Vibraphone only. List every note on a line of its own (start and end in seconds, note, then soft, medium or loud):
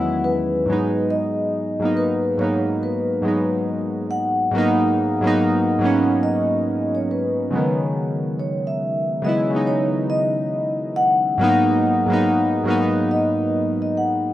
0.00 0.27 F#5 loud
0.24 1.06 B4 medium
1.10 1.98 D#5 loud
1.97 2.40 B4 medium
2.39 2.58 C#5 medium
2.83 3.64 B4 medium
4.11 6.31 F#5 loud
6.23 6.96 D#5 medium
6.95 7.09 C#5 medium
7.11 7.77 B4 medium
8.40 8.67 C#5 medium
8.67 9.26 E5 medium
9.25 9.68 D#5 medium
9.67 9.86 C#5 medium
10.10 10.98 D#5 loud
10.96 13.16 F#5 loud
13.11 13.81 D#5 medium
13.82 13.97 D#5 medium
13.97 14.33 F#5 medium